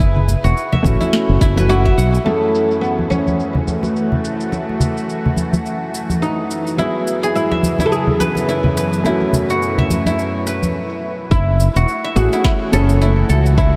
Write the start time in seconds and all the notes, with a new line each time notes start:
Already playing: F#1 G#4 B4 E5
0.00 E4, kick, shaker
0.16 muted conga, low conga
0.28 low conga, shaker
0.44 E1 F#4, shaker
0.57 shaker
0.72 E5, high conga, low conga
0.82 A1 A3 C#4 E4, kick, high conga, shaker
0.87 F#4
1.00 E4, muted conga, high conga, shaker
1.13 snare, shaker
1.29 F#1
1.41 F#1 E4, kick, shaker
1.56 A3 C#4 E4 F#4 B4, high conga, shaker
1.69 E4 F#4, shaker
1.85 E5, kick
1.98 B1 F#5, shaker
2.14 shaker
2.24 F#2 E3 A3 C#4 F#4 G#4, muted conga, shaker
2.55 shaker
2.71 shaker
2.81 B3, shaker
2.99 high conga
3.10 C#4, high conga, shaker
3.26 muted conga, high conga, shaker
3.40 shaker
3.55 low conga
3.67 muted conga, high conga, shaker
3.83 muted conga, shaker
3.96 shaker
4.12 low conga
4.25 shaker
4.40 shaker
4.52 muted conga, shaker
4.69 muted conga
4.80 low conga, shaker
4.97 shaker
5.10 shaker
5.26 low conga
5.36 high conga, shaker
5.53 muted conga, high conga, shaker
5.66 shaker
5.94 shaker
6.09 high conga, shaker
6.22 D#4, shaker
6.51 shaker
6.67 shaker
6.77 F#2 C#3 E3 F#3 B3 E4 G#4, muted conga, shaker
7.07 shaker
7.23 G#4, shaker
7.35 E4, shaker
7.51 E5, high conga
7.63 high conga, shaker
7.78 E4, muted conga, high conga, shaker
7.86 A4
7.92 G#4, shaker
8.07 low conga
8.20 B4, muted conga, high conga, shaker
8.35 muted conga, shaker
8.49 E4, shaker
8.64 low conga
8.77 B4, shaker
8.93 shaker
9.03 F#2 B2 A3 C#4 E4 F#4, muted conga, shaker
9.21 muted conga
9.33 low conga, shaker
9.50 F#4, shaker
9.62 shaker
9.78 E5, low conga
9.90 high conga, shaker
10.06 E4, muted conga, high conga, shaker
10.19 shaker
10.47 B4, shaker
10.62 high conga, shaker
11.31 F#1 E3 A3 E4 F#4, kick, shaker
11.60 shaker
11.76 E1 F#4, shaker
11.88 shaker
12.04 E5
12.16 A1 A3 C#4 E4 F#4 G#4, shaker
12.33 E4, shaker
12.44 E4, kick, snare, shaker
12.72 F#1 A3 C#4 E4 G#4 A4, shaker
12.89 shaker
13.01 E4, shaker
13.29 C#2 A4, shaker
13.46 shaker
13.58 E4, kick, shaker